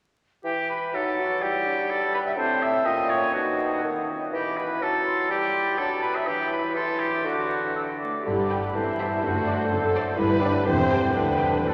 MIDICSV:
0, 0, Header, 1, 11, 480
1, 0, Start_track
1, 0, Key_signature, 1, "minor"
1, 0, Tempo, 483092
1, 440, Time_signature, 2, 2, 24, 8
1, 2829, Tempo, 489396
1, 6191, Key_signature, 1, "major"
1, 6669, Tempo, 500000
1, 8589, Tempo, 483481
1, 11544, End_track
2, 0, Start_track
2, 0, Title_t, "Flute"
2, 0, Program_c, 0, 73
2, 437, Note_on_c, 0, 79, 33
2, 895, Note_off_c, 0, 79, 0
2, 938, Note_on_c, 0, 78, 38
2, 1865, Note_off_c, 0, 78, 0
2, 1877, Note_on_c, 0, 83, 46
2, 2359, Note_on_c, 0, 81, 49
2, 2374, Note_off_c, 0, 83, 0
2, 2831, Note_on_c, 0, 79, 42
2, 2846, Note_off_c, 0, 81, 0
2, 3308, Note_off_c, 0, 79, 0
2, 3314, Note_on_c, 0, 78, 42
2, 4028, Note_off_c, 0, 78, 0
2, 4285, Note_on_c, 0, 83, 40
2, 4732, Note_off_c, 0, 83, 0
2, 4759, Note_on_c, 0, 81, 39
2, 4981, Note_off_c, 0, 81, 0
2, 4987, Note_on_c, 0, 84, 45
2, 5225, Note_on_c, 0, 83, 45
2, 5240, Note_off_c, 0, 84, 0
2, 6179, Note_off_c, 0, 83, 0
2, 6185, Note_on_c, 0, 83, 47
2, 6655, Note_off_c, 0, 83, 0
2, 6662, Note_on_c, 0, 84, 45
2, 7131, Note_on_c, 0, 86, 42
2, 7146, Note_off_c, 0, 84, 0
2, 7575, Note_off_c, 0, 86, 0
2, 7622, Note_on_c, 0, 88, 41
2, 7679, Note_off_c, 0, 88, 0
2, 7868, Note_on_c, 0, 86, 32
2, 8107, Note_off_c, 0, 86, 0
2, 8115, Note_on_c, 0, 83, 33
2, 8578, Note_on_c, 0, 81, 33
2, 8592, Note_off_c, 0, 83, 0
2, 9740, Note_off_c, 0, 81, 0
2, 10002, Note_on_c, 0, 83, 47
2, 10467, Note_on_c, 0, 79, 54
2, 10482, Note_off_c, 0, 83, 0
2, 10957, Note_off_c, 0, 79, 0
2, 10962, Note_on_c, 0, 79, 43
2, 11470, Note_on_c, 0, 81, 36
2, 11485, Note_off_c, 0, 79, 0
2, 11544, Note_off_c, 0, 81, 0
2, 11544, End_track
3, 0, Start_track
3, 0, Title_t, "Violin section"
3, 0, Program_c, 1, 48
3, 8348, Note_on_c, 1, 79, 33
3, 8525, Note_off_c, 1, 79, 0
3, 8828, Note_on_c, 1, 76, 40
3, 9007, Note_off_c, 1, 76, 0
3, 9307, Note_on_c, 1, 74, 39
3, 9482, Note_off_c, 1, 74, 0
3, 9783, Note_on_c, 1, 74, 56
3, 9954, Note_off_c, 1, 74, 0
3, 10253, Note_on_c, 1, 74, 56
3, 10426, Note_off_c, 1, 74, 0
3, 10730, Note_on_c, 1, 79, 54
3, 10908, Note_off_c, 1, 79, 0
3, 11206, Note_on_c, 1, 79, 41
3, 11396, Note_off_c, 1, 79, 0
3, 11544, End_track
4, 0, Start_track
4, 0, Title_t, "Oboe"
4, 0, Program_c, 2, 68
4, 438, Note_on_c, 2, 67, 57
4, 668, Note_off_c, 2, 67, 0
4, 688, Note_on_c, 2, 71, 50
4, 937, Note_on_c, 2, 69, 57
4, 952, Note_off_c, 2, 71, 0
4, 1411, Note_on_c, 2, 67, 63
4, 1426, Note_off_c, 2, 69, 0
4, 1886, Note_on_c, 2, 69, 64
4, 1901, Note_off_c, 2, 67, 0
4, 2117, Note_off_c, 2, 69, 0
4, 2131, Note_on_c, 2, 71, 74
4, 2180, Note_off_c, 2, 71, 0
4, 2247, Note_on_c, 2, 76, 69
4, 2297, Note_off_c, 2, 76, 0
4, 2365, Note_on_c, 2, 72, 66
4, 2604, Note_on_c, 2, 76, 71
4, 2619, Note_off_c, 2, 72, 0
4, 2836, Note_on_c, 2, 75, 68
4, 2850, Note_off_c, 2, 76, 0
4, 3070, Note_on_c, 2, 73, 65
4, 3084, Note_off_c, 2, 75, 0
4, 3305, Note_on_c, 2, 66, 53
4, 3320, Note_off_c, 2, 73, 0
4, 3793, Note_off_c, 2, 66, 0
4, 4283, Note_on_c, 2, 67, 50
4, 4513, Note_on_c, 2, 71, 55
4, 4527, Note_off_c, 2, 67, 0
4, 4765, Note_on_c, 2, 69, 60
4, 4779, Note_off_c, 2, 71, 0
4, 5232, Note_off_c, 2, 69, 0
4, 5238, Note_on_c, 2, 67, 67
4, 5706, Note_on_c, 2, 69, 65
4, 5721, Note_off_c, 2, 67, 0
4, 5934, Note_off_c, 2, 69, 0
4, 5939, Note_on_c, 2, 71, 70
4, 6070, Note_on_c, 2, 76, 66
4, 6085, Note_off_c, 2, 71, 0
4, 6185, Note_on_c, 2, 67, 68
4, 6200, Note_off_c, 2, 76, 0
4, 6420, Note_off_c, 2, 67, 0
4, 6426, Note_on_c, 2, 71, 64
4, 6656, Note_off_c, 2, 71, 0
4, 6661, Note_on_c, 2, 69, 66
4, 6889, Note_on_c, 2, 67, 57
4, 6903, Note_off_c, 2, 69, 0
4, 7130, Note_off_c, 2, 67, 0
4, 7136, Note_on_c, 2, 66, 49
4, 7218, Note_on_c, 2, 67, 36
4, 7232, Note_off_c, 2, 66, 0
4, 7284, Note_on_c, 2, 66, 46
4, 7298, Note_off_c, 2, 67, 0
4, 7629, Note_off_c, 2, 66, 0
4, 8113, Note_on_c, 2, 71, 36
4, 8554, Note_off_c, 2, 71, 0
4, 8580, Note_on_c, 2, 72, 42
4, 9979, Note_off_c, 2, 72, 0
4, 10018, Note_on_c, 2, 71, 54
4, 10472, Note_on_c, 2, 72, 55
4, 10487, Note_off_c, 2, 71, 0
4, 10962, Note_off_c, 2, 72, 0
4, 10969, Note_on_c, 2, 71, 41
4, 11479, Note_on_c, 2, 69, 41
4, 11494, Note_off_c, 2, 71, 0
4, 11544, Note_off_c, 2, 69, 0
4, 11544, End_track
5, 0, Start_track
5, 0, Title_t, "Violin section"
5, 0, Program_c, 3, 48
5, 8343, Note_on_c, 3, 67, 36
5, 8349, Note_on_c, 3, 71, 35
5, 8523, Note_off_c, 3, 67, 0
5, 8526, Note_off_c, 3, 71, 0
5, 8830, Note_on_c, 3, 72, 39
5, 8835, Note_on_c, 3, 69, 37
5, 9008, Note_off_c, 3, 72, 0
5, 9011, Note_off_c, 3, 69, 0
5, 9292, Note_on_c, 3, 69, 41
5, 9293, Note_on_c, 3, 72, 42
5, 9474, Note_off_c, 3, 69, 0
5, 9475, Note_off_c, 3, 72, 0
5, 9763, Note_on_c, 3, 72, 51
5, 9766, Note_on_c, 3, 69, 45
5, 9944, Note_off_c, 3, 72, 0
5, 9946, Note_off_c, 3, 69, 0
5, 10236, Note_on_c, 3, 67, 55
5, 10237, Note_on_c, 3, 71, 55
5, 10417, Note_off_c, 3, 67, 0
5, 10418, Note_off_c, 3, 71, 0
5, 10708, Note_on_c, 3, 67, 55
5, 10710, Note_on_c, 3, 72, 50
5, 10896, Note_off_c, 3, 67, 0
5, 10897, Note_off_c, 3, 72, 0
5, 11195, Note_on_c, 3, 71, 45
5, 11201, Note_on_c, 3, 67, 44
5, 11390, Note_off_c, 3, 71, 0
5, 11393, Note_off_c, 3, 67, 0
5, 11544, End_track
6, 0, Start_track
6, 0, Title_t, "Viola section"
6, 0, Program_c, 4, 48
6, 8091, Note_on_c, 4, 67, 37
6, 8542, Note_off_c, 4, 67, 0
6, 8573, Note_on_c, 4, 64, 42
6, 9052, Note_off_c, 4, 64, 0
6, 9061, Note_on_c, 4, 66, 42
6, 9537, Note_on_c, 4, 69, 58
6, 9538, Note_off_c, 4, 66, 0
6, 9999, Note_off_c, 4, 69, 0
6, 10017, Note_on_c, 4, 71, 64
6, 10477, Note_off_c, 4, 71, 0
6, 10490, Note_on_c, 4, 72, 74
6, 10961, Note_off_c, 4, 72, 0
6, 10964, Note_on_c, 4, 71, 48
6, 11544, Note_off_c, 4, 71, 0
6, 11544, End_track
7, 0, Start_track
7, 0, Title_t, "Clarinet"
7, 0, Program_c, 5, 71
7, 440, Note_on_c, 5, 64, 35
7, 937, Note_on_c, 5, 63, 40
7, 952, Note_off_c, 5, 64, 0
7, 1185, Note_on_c, 5, 66, 44
7, 1200, Note_off_c, 5, 63, 0
7, 1428, Note_on_c, 5, 64, 43
7, 1443, Note_off_c, 5, 66, 0
7, 1656, Note_on_c, 5, 62, 39
7, 1671, Note_off_c, 5, 64, 0
7, 2356, Note_off_c, 5, 62, 0
7, 2360, Note_on_c, 5, 60, 43
7, 2823, Note_off_c, 5, 60, 0
7, 2827, Note_on_c, 5, 61, 43
7, 3299, Note_off_c, 5, 61, 0
7, 3311, Note_on_c, 5, 63, 37
7, 4026, Note_off_c, 5, 63, 0
7, 4294, Note_on_c, 5, 64, 37
7, 5206, Note_off_c, 5, 64, 0
7, 5240, Note_on_c, 5, 64, 37
7, 5709, Note_off_c, 5, 64, 0
7, 5713, Note_on_c, 5, 62, 47
7, 6192, Note_on_c, 5, 64, 41
7, 6207, Note_off_c, 5, 62, 0
7, 6665, Note_off_c, 5, 64, 0
7, 6671, Note_on_c, 5, 64, 45
7, 7144, Note_on_c, 5, 66, 40
7, 7159, Note_off_c, 5, 64, 0
7, 7872, Note_off_c, 5, 66, 0
7, 8108, Note_on_c, 5, 67, 31
7, 8590, Note_on_c, 5, 69, 37
7, 8604, Note_off_c, 5, 67, 0
7, 9998, Note_off_c, 5, 69, 0
7, 10004, Note_on_c, 5, 67, 54
7, 10447, Note_off_c, 5, 67, 0
7, 10480, Note_on_c, 5, 67, 55
7, 10956, Note_off_c, 5, 67, 0
7, 10965, Note_on_c, 5, 67, 43
7, 11446, Note_on_c, 5, 66, 40
7, 11461, Note_off_c, 5, 67, 0
7, 11544, Note_off_c, 5, 66, 0
7, 11544, End_track
8, 0, Start_track
8, 0, Title_t, "French horn section"
8, 0, Program_c, 6, 60
8, 7868, Note_on_c, 6, 57, 50
8, 7978, Note_off_c, 6, 57, 0
8, 8108, Note_on_c, 6, 64, 46
8, 8216, Note_off_c, 6, 64, 0
8, 8349, Note_on_c, 6, 62, 42
8, 8456, Note_off_c, 6, 62, 0
8, 8592, Note_on_c, 6, 60, 48
8, 8700, Note_off_c, 6, 60, 0
8, 8821, Note_on_c, 6, 59, 49
8, 9048, Note_on_c, 6, 57, 44
8, 9060, Note_off_c, 6, 59, 0
8, 9522, Note_off_c, 6, 57, 0
8, 9763, Note_on_c, 6, 57, 66
8, 9987, Note_off_c, 6, 57, 0
8, 9988, Note_on_c, 6, 64, 79
8, 10225, Note_on_c, 6, 62, 66
8, 10230, Note_off_c, 6, 64, 0
8, 10471, Note_on_c, 6, 60, 77
8, 10473, Note_off_c, 6, 62, 0
8, 10959, Note_on_c, 6, 62, 58
8, 10961, Note_off_c, 6, 60, 0
8, 11544, Note_off_c, 6, 62, 0
8, 11544, End_track
9, 0, Start_track
9, 0, Title_t, "Bassoon"
9, 0, Program_c, 7, 70
9, 442, Note_on_c, 7, 52, 44
9, 898, Note_off_c, 7, 52, 0
9, 933, Note_on_c, 7, 54, 40
9, 1409, Note_on_c, 7, 55, 47
9, 1424, Note_off_c, 7, 54, 0
9, 2356, Note_on_c, 7, 45, 55
9, 2371, Note_off_c, 7, 55, 0
9, 2832, Note_on_c, 7, 46, 50
9, 2846, Note_off_c, 7, 45, 0
9, 3301, Note_off_c, 7, 46, 0
9, 3307, Note_on_c, 7, 47, 40
9, 3784, Note_off_c, 7, 47, 0
9, 3801, Note_on_c, 7, 51, 35
9, 4038, Note_off_c, 7, 51, 0
9, 4281, Note_on_c, 7, 52, 43
9, 4757, Note_on_c, 7, 54, 42
9, 4772, Note_off_c, 7, 52, 0
9, 5237, Note_on_c, 7, 55, 47
9, 5252, Note_off_c, 7, 54, 0
9, 5709, Note_off_c, 7, 55, 0
9, 5715, Note_on_c, 7, 54, 41
9, 6180, Note_off_c, 7, 54, 0
9, 6187, Note_on_c, 7, 52, 53
9, 7135, Note_on_c, 7, 50, 44
9, 7149, Note_off_c, 7, 52, 0
9, 7867, Note_off_c, 7, 50, 0
9, 8103, Note_on_c, 7, 50, 34
9, 8578, Note_on_c, 7, 52, 34
9, 8592, Note_off_c, 7, 50, 0
9, 9057, Note_on_c, 7, 50, 40
9, 9072, Note_off_c, 7, 52, 0
9, 9990, Note_off_c, 7, 50, 0
9, 9996, Note_on_c, 7, 50, 50
9, 10472, Note_on_c, 7, 52, 50
9, 10487, Note_off_c, 7, 50, 0
9, 10948, Note_off_c, 7, 52, 0
9, 10954, Note_on_c, 7, 50, 41
9, 11440, Note_off_c, 7, 50, 0
9, 11446, Note_on_c, 7, 50, 32
9, 11544, Note_off_c, 7, 50, 0
9, 11544, End_track
10, 0, Start_track
10, 0, Title_t, "Cello section"
10, 0, Program_c, 8, 48
10, 8109, Note_on_c, 8, 43, 42
10, 8486, Note_off_c, 8, 43, 0
10, 8582, Note_on_c, 8, 43, 42
10, 8966, Note_off_c, 8, 43, 0
10, 9066, Note_on_c, 8, 42, 48
10, 9442, Note_off_c, 8, 42, 0
10, 9535, Note_on_c, 8, 42, 54
10, 9910, Note_off_c, 8, 42, 0
10, 10008, Note_on_c, 8, 43, 61
10, 10382, Note_off_c, 8, 43, 0
10, 10489, Note_on_c, 8, 40, 66
10, 10868, Note_off_c, 8, 40, 0
10, 10966, Note_on_c, 8, 38, 52
10, 11359, Note_off_c, 8, 38, 0
10, 11470, Note_on_c, 8, 38, 43
10, 11544, Note_off_c, 8, 38, 0
10, 11544, End_track
11, 0, Start_track
11, 0, Title_t, "Double bass section"
11, 0, Program_c, 10, 48
11, 8109, Note_on_c, 10, 31, 43
11, 8486, Note_off_c, 10, 31, 0
11, 8581, Note_on_c, 10, 31, 38
11, 8965, Note_off_c, 10, 31, 0
11, 9079, Note_on_c, 10, 30, 45
11, 9449, Note_off_c, 10, 30, 0
11, 9548, Note_on_c, 10, 30, 46
11, 9916, Note_off_c, 10, 30, 0
11, 10011, Note_on_c, 10, 31, 64
11, 10384, Note_off_c, 10, 31, 0
11, 10490, Note_on_c, 10, 28, 61
11, 10869, Note_off_c, 10, 28, 0
11, 10963, Note_on_c, 10, 38, 46
11, 11358, Note_off_c, 10, 38, 0
11, 11464, Note_on_c, 10, 38, 42
11, 11544, Note_off_c, 10, 38, 0
11, 11544, End_track
0, 0, End_of_file